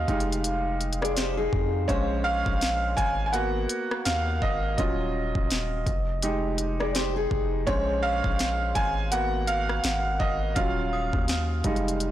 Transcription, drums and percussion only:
0, 0, Header, 1, 2, 480
1, 0, Start_track
1, 0, Tempo, 722892
1, 1254, Time_signature, 4, 2, 24, 8
1, 8043, End_track
2, 0, Start_track
2, 0, Title_t, "Drums"
2, 54, Note_on_c, 9, 36, 105
2, 54, Note_on_c, 9, 42, 58
2, 121, Note_off_c, 9, 36, 0
2, 121, Note_off_c, 9, 42, 0
2, 135, Note_on_c, 9, 42, 55
2, 201, Note_off_c, 9, 42, 0
2, 215, Note_on_c, 9, 42, 58
2, 282, Note_off_c, 9, 42, 0
2, 294, Note_on_c, 9, 42, 81
2, 360, Note_off_c, 9, 42, 0
2, 535, Note_on_c, 9, 42, 60
2, 602, Note_off_c, 9, 42, 0
2, 615, Note_on_c, 9, 42, 60
2, 679, Note_on_c, 9, 37, 102
2, 681, Note_off_c, 9, 42, 0
2, 696, Note_on_c, 9, 42, 64
2, 746, Note_off_c, 9, 37, 0
2, 762, Note_off_c, 9, 42, 0
2, 774, Note_on_c, 9, 42, 79
2, 781, Note_on_c, 9, 38, 122
2, 840, Note_off_c, 9, 42, 0
2, 847, Note_off_c, 9, 38, 0
2, 1014, Note_on_c, 9, 36, 97
2, 1081, Note_off_c, 9, 36, 0
2, 1255, Note_on_c, 9, 36, 110
2, 1255, Note_on_c, 9, 42, 61
2, 1321, Note_off_c, 9, 36, 0
2, 1321, Note_off_c, 9, 42, 0
2, 1634, Note_on_c, 9, 36, 105
2, 1701, Note_off_c, 9, 36, 0
2, 1736, Note_on_c, 9, 42, 67
2, 1743, Note_on_c, 9, 38, 112
2, 1802, Note_off_c, 9, 42, 0
2, 1810, Note_off_c, 9, 38, 0
2, 1975, Note_on_c, 9, 36, 92
2, 1977, Note_on_c, 9, 42, 63
2, 2042, Note_off_c, 9, 36, 0
2, 2044, Note_off_c, 9, 42, 0
2, 2215, Note_on_c, 9, 42, 80
2, 2281, Note_off_c, 9, 42, 0
2, 2453, Note_on_c, 9, 42, 72
2, 2519, Note_off_c, 9, 42, 0
2, 2598, Note_on_c, 9, 37, 104
2, 2665, Note_off_c, 9, 37, 0
2, 2692, Note_on_c, 9, 42, 73
2, 2699, Note_on_c, 9, 38, 122
2, 2759, Note_off_c, 9, 42, 0
2, 2765, Note_off_c, 9, 38, 0
2, 2934, Note_on_c, 9, 36, 96
2, 3001, Note_off_c, 9, 36, 0
2, 3175, Note_on_c, 9, 36, 114
2, 3175, Note_on_c, 9, 42, 61
2, 3241, Note_off_c, 9, 36, 0
2, 3241, Note_off_c, 9, 42, 0
2, 3554, Note_on_c, 9, 36, 101
2, 3620, Note_off_c, 9, 36, 0
2, 3655, Note_on_c, 9, 42, 72
2, 3663, Note_on_c, 9, 38, 103
2, 3722, Note_off_c, 9, 42, 0
2, 3729, Note_off_c, 9, 38, 0
2, 3895, Note_on_c, 9, 36, 105
2, 3895, Note_on_c, 9, 42, 64
2, 3961, Note_off_c, 9, 36, 0
2, 3961, Note_off_c, 9, 42, 0
2, 4133, Note_on_c, 9, 42, 77
2, 4200, Note_off_c, 9, 42, 0
2, 4370, Note_on_c, 9, 42, 69
2, 4436, Note_off_c, 9, 42, 0
2, 4518, Note_on_c, 9, 37, 96
2, 4584, Note_off_c, 9, 37, 0
2, 4614, Note_on_c, 9, 42, 74
2, 4620, Note_on_c, 9, 38, 122
2, 4680, Note_off_c, 9, 42, 0
2, 4687, Note_off_c, 9, 38, 0
2, 4854, Note_on_c, 9, 36, 93
2, 4921, Note_off_c, 9, 36, 0
2, 5094, Note_on_c, 9, 36, 114
2, 5094, Note_on_c, 9, 42, 62
2, 5161, Note_off_c, 9, 36, 0
2, 5161, Note_off_c, 9, 42, 0
2, 5473, Note_on_c, 9, 36, 105
2, 5539, Note_off_c, 9, 36, 0
2, 5573, Note_on_c, 9, 42, 70
2, 5580, Note_on_c, 9, 38, 106
2, 5639, Note_off_c, 9, 42, 0
2, 5647, Note_off_c, 9, 38, 0
2, 5813, Note_on_c, 9, 42, 69
2, 5814, Note_on_c, 9, 36, 89
2, 5879, Note_off_c, 9, 42, 0
2, 5881, Note_off_c, 9, 36, 0
2, 6054, Note_on_c, 9, 42, 81
2, 6120, Note_off_c, 9, 42, 0
2, 6291, Note_on_c, 9, 42, 73
2, 6358, Note_off_c, 9, 42, 0
2, 6437, Note_on_c, 9, 37, 100
2, 6503, Note_off_c, 9, 37, 0
2, 6532, Note_on_c, 9, 42, 75
2, 6538, Note_on_c, 9, 38, 116
2, 6598, Note_off_c, 9, 42, 0
2, 6605, Note_off_c, 9, 38, 0
2, 6773, Note_on_c, 9, 36, 94
2, 6840, Note_off_c, 9, 36, 0
2, 7012, Note_on_c, 9, 42, 61
2, 7013, Note_on_c, 9, 36, 111
2, 7078, Note_off_c, 9, 42, 0
2, 7079, Note_off_c, 9, 36, 0
2, 7392, Note_on_c, 9, 36, 102
2, 7458, Note_off_c, 9, 36, 0
2, 7491, Note_on_c, 9, 42, 71
2, 7498, Note_on_c, 9, 38, 103
2, 7557, Note_off_c, 9, 42, 0
2, 7565, Note_off_c, 9, 38, 0
2, 7730, Note_on_c, 9, 42, 58
2, 7732, Note_on_c, 9, 36, 110
2, 7796, Note_off_c, 9, 42, 0
2, 7799, Note_off_c, 9, 36, 0
2, 7811, Note_on_c, 9, 42, 55
2, 7877, Note_off_c, 9, 42, 0
2, 7890, Note_on_c, 9, 42, 56
2, 7956, Note_off_c, 9, 42, 0
2, 7970, Note_on_c, 9, 42, 81
2, 8037, Note_off_c, 9, 42, 0
2, 8043, End_track
0, 0, End_of_file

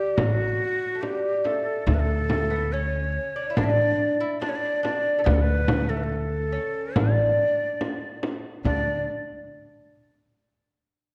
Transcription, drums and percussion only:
0, 0, Header, 1, 2, 480
1, 0, Start_track
1, 0, Tempo, 846262
1, 1065, Time_signature, 4, 2, 24, 8
1, 6322, End_track
2, 0, Start_track
2, 0, Title_t, "Frame drum"
2, 100, Note_on_c, 9, 64, 99
2, 157, Note_off_c, 9, 64, 0
2, 583, Note_on_c, 9, 64, 59
2, 640, Note_off_c, 9, 64, 0
2, 823, Note_on_c, 9, 64, 63
2, 880, Note_off_c, 9, 64, 0
2, 1061, Note_on_c, 9, 64, 86
2, 1118, Note_off_c, 9, 64, 0
2, 1302, Note_on_c, 9, 64, 81
2, 1359, Note_off_c, 9, 64, 0
2, 2024, Note_on_c, 9, 64, 102
2, 2081, Note_off_c, 9, 64, 0
2, 2507, Note_on_c, 9, 64, 70
2, 2564, Note_off_c, 9, 64, 0
2, 2749, Note_on_c, 9, 64, 71
2, 2806, Note_off_c, 9, 64, 0
2, 2985, Note_on_c, 9, 64, 102
2, 3042, Note_off_c, 9, 64, 0
2, 3223, Note_on_c, 9, 64, 101
2, 3280, Note_off_c, 9, 64, 0
2, 3947, Note_on_c, 9, 64, 97
2, 4004, Note_off_c, 9, 64, 0
2, 4429, Note_on_c, 9, 64, 72
2, 4486, Note_off_c, 9, 64, 0
2, 4668, Note_on_c, 9, 64, 73
2, 4725, Note_off_c, 9, 64, 0
2, 4908, Note_on_c, 9, 64, 75
2, 4965, Note_off_c, 9, 64, 0
2, 6322, End_track
0, 0, End_of_file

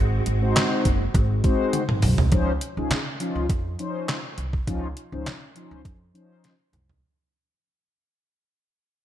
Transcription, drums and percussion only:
0, 0, Header, 1, 2, 480
1, 0, Start_track
1, 0, Key_signature, -5, "major"
1, 0, Tempo, 588235
1, 1894, Time_signature, 4, 2, 24, 8
1, 7381, End_track
2, 0, Start_track
2, 0, Title_t, "Drums"
2, 213, Note_on_c, 9, 42, 83
2, 294, Note_off_c, 9, 42, 0
2, 456, Note_on_c, 9, 42, 104
2, 461, Note_on_c, 9, 39, 98
2, 462, Note_on_c, 9, 38, 119
2, 537, Note_off_c, 9, 42, 0
2, 543, Note_off_c, 9, 39, 0
2, 544, Note_off_c, 9, 38, 0
2, 695, Note_on_c, 9, 42, 75
2, 696, Note_on_c, 9, 36, 92
2, 777, Note_off_c, 9, 42, 0
2, 778, Note_off_c, 9, 36, 0
2, 934, Note_on_c, 9, 36, 115
2, 936, Note_on_c, 9, 42, 78
2, 1016, Note_off_c, 9, 36, 0
2, 1017, Note_off_c, 9, 42, 0
2, 1174, Note_on_c, 9, 42, 53
2, 1177, Note_on_c, 9, 36, 99
2, 1256, Note_off_c, 9, 42, 0
2, 1258, Note_off_c, 9, 36, 0
2, 1413, Note_on_c, 9, 42, 87
2, 1413, Note_on_c, 9, 48, 65
2, 1495, Note_off_c, 9, 42, 0
2, 1495, Note_off_c, 9, 48, 0
2, 1540, Note_on_c, 9, 47, 65
2, 1622, Note_off_c, 9, 47, 0
2, 1651, Note_on_c, 9, 46, 79
2, 1653, Note_on_c, 9, 45, 91
2, 1733, Note_off_c, 9, 46, 0
2, 1735, Note_off_c, 9, 45, 0
2, 1781, Note_on_c, 9, 43, 95
2, 1862, Note_off_c, 9, 43, 0
2, 1891, Note_on_c, 9, 42, 77
2, 1894, Note_on_c, 9, 36, 99
2, 1972, Note_off_c, 9, 42, 0
2, 1976, Note_off_c, 9, 36, 0
2, 2132, Note_on_c, 9, 42, 85
2, 2214, Note_off_c, 9, 42, 0
2, 2372, Note_on_c, 9, 42, 96
2, 2377, Note_on_c, 9, 39, 91
2, 2378, Note_on_c, 9, 38, 115
2, 2453, Note_off_c, 9, 42, 0
2, 2459, Note_off_c, 9, 39, 0
2, 2460, Note_off_c, 9, 38, 0
2, 2612, Note_on_c, 9, 42, 72
2, 2694, Note_off_c, 9, 42, 0
2, 2852, Note_on_c, 9, 36, 108
2, 2853, Note_on_c, 9, 42, 79
2, 2933, Note_off_c, 9, 36, 0
2, 2934, Note_off_c, 9, 42, 0
2, 3094, Note_on_c, 9, 42, 52
2, 3175, Note_off_c, 9, 42, 0
2, 3332, Note_on_c, 9, 42, 83
2, 3336, Note_on_c, 9, 39, 93
2, 3337, Note_on_c, 9, 38, 119
2, 3413, Note_off_c, 9, 42, 0
2, 3417, Note_off_c, 9, 39, 0
2, 3418, Note_off_c, 9, 38, 0
2, 3572, Note_on_c, 9, 42, 75
2, 3653, Note_off_c, 9, 42, 0
2, 3699, Note_on_c, 9, 36, 100
2, 3781, Note_off_c, 9, 36, 0
2, 3814, Note_on_c, 9, 36, 104
2, 3815, Note_on_c, 9, 42, 75
2, 3896, Note_off_c, 9, 36, 0
2, 3896, Note_off_c, 9, 42, 0
2, 4054, Note_on_c, 9, 42, 79
2, 4135, Note_off_c, 9, 42, 0
2, 4295, Note_on_c, 9, 42, 88
2, 4300, Note_on_c, 9, 39, 94
2, 4301, Note_on_c, 9, 38, 117
2, 4376, Note_off_c, 9, 42, 0
2, 4382, Note_off_c, 9, 39, 0
2, 4383, Note_off_c, 9, 38, 0
2, 4534, Note_on_c, 9, 42, 70
2, 4616, Note_off_c, 9, 42, 0
2, 4774, Note_on_c, 9, 36, 105
2, 4776, Note_on_c, 9, 42, 72
2, 4856, Note_off_c, 9, 36, 0
2, 4857, Note_off_c, 9, 42, 0
2, 5020, Note_on_c, 9, 42, 57
2, 5101, Note_off_c, 9, 42, 0
2, 5255, Note_on_c, 9, 42, 83
2, 5261, Note_on_c, 9, 38, 59
2, 5337, Note_off_c, 9, 42, 0
2, 5343, Note_off_c, 9, 38, 0
2, 5494, Note_on_c, 9, 42, 75
2, 5496, Note_on_c, 9, 45, 79
2, 5576, Note_off_c, 9, 42, 0
2, 5577, Note_off_c, 9, 45, 0
2, 5626, Note_on_c, 9, 43, 87
2, 5708, Note_off_c, 9, 43, 0
2, 7381, End_track
0, 0, End_of_file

